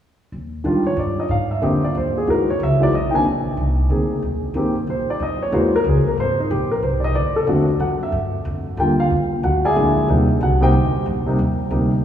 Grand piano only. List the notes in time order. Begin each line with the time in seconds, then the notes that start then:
0.64 D#3 G3 D4 F4
0.87 C#5
0.99 D5
1.20 D#5
1.31 F5
1.51 E5
1.62 D3 A#3 C4 G4 D#5
1.84 D5
1.97 C5
2.18 G#4
2.26 E3 G#3 D#4 F#4
2.30 A#4
2.50 C#5
2.63 E5
2.80 E3 G#3 D#4 F#4 D5
2.95 D#5
3.11 D#3 A#3 C4 D4 G5
3.15 G#5
3.90 A#3 C4 D#4 G#4
4.55 D#3 A#3 C4 G4
4.90 C5
5.10 D5
5.23 D#5
5.43 C#5
5.52 E3 G#3 A#3 F#4 C5
5.76 A#4
5.88 G#4
6.08 A#4
6.20 C5
6.40 D#4
6.51 G4
6.71 A#4
6.79 B4
6.83 C5
7.00 D5
7.04 D#5
7.15 D5
7.36 A4
7.47 D3 A3 C4 F#4
7.81 F#5
8.03 E5
8.78 D3 G3 A#3 F4 G5
9.00 F5
9.44 F#4 F#5
9.65 G#4 D5 E5 G#5
9.76 D3 G#3 A#3 E4
10.08 C3 G3 A#3 D#4
10.43 F#4 F#5
10.61 C3 G3 A#3 D#4 G4 C5 D#5 G5
11.26 C3 G3 A#3 D#4
11.71 C3 G3 A#3 D#4